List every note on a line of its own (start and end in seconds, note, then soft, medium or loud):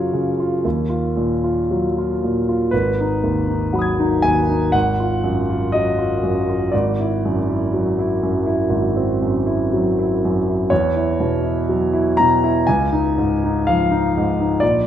0.00 0.61 F#2 soft
0.00 0.13 C#3 soft
0.00 0.67 F#3 soft
0.00 0.40 F4 soft
0.00 2.21 C#5 soft
0.13 0.54 C#3 soft
0.40 0.65 F4 soft
0.65 2.68 D#2 soft
0.90 1.32 F4 soft
1.17 1.59 A#2 soft
1.44 1.86 F4 soft
1.71 2.12 F#3 soft
1.98 2.38 F4 soft
2.24 2.63 A#2 soft
2.49 2.73 F4 soft
2.71 4.71 G#1 soft
2.71 4.23 B4 medium
3.00 3.39 D#4 soft
3.23 3.63 D#2 soft
3.48 3.88 D#4 soft
3.73 4.14 F#3 soft
3.73 4.70 F#5 soft
3.73 4.72 B5 soft
3.79 4.73 D#6 soft
3.79 4.75 G#6 soft
3.99 4.40 D#4 soft
4.22 4.64 D#2 soft
4.22 4.74 G#5 medium
4.49 4.74 D#4 soft
4.72 6.69 G#1 soft
4.72 5.73 F#5 medium
5.00 5.40 F4 soft
5.24 5.64 F#2 soft
5.50 5.89 F4 soft
5.72 6.14 F#3 soft
5.72 6.72 D#5 medium
5.99 6.38 F4 soft
6.23 6.63 F#2 soft
6.49 6.73 F4 soft
6.72 8.68 G#1 soft
6.72 10.21 D5 soft
7.00 7.39 E4 soft
7.25 7.64 F#2 soft
7.50 7.89 E4 soft
7.74 8.13 F#3 soft
7.99 8.38 E4 soft
8.23 8.62 F#2 soft
8.46 8.86 E4 soft
8.69 10.66 G#1 soft
8.97 9.37 C4 soft
9.22 9.62 F#2 soft
9.46 9.87 E4 soft
9.73 10.12 F#3 soft
9.99 10.38 E4 soft
10.25 10.63 F#2 soft
10.49 10.72 E4 soft
10.70 12.62 E2 soft
10.70 12.16 C#5 medium
10.96 11.34 E4 soft
11.20 11.58 B2 soft
11.44 11.83 E4 soft
11.69 12.08 F#3 soft
11.93 12.32 E4 soft
12.17 12.57 B2 soft
12.17 12.66 A#5 medium
12.44 12.67 E4 soft
12.67 14.59 C#2 soft
12.67 13.65 G#5 medium
12.93 13.31 D#4 soft
13.18 13.56 G#2 soft
13.44 13.81 D#4 soft
13.67 14.06 F3 soft
13.67 14.63 F5 medium
13.91 14.29 D#4 soft
14.17 14.54 G#2 soft
14.40 14.63 D#4 soft
14.60 14.87 A#1 soft
14.60 14.87 D5 medium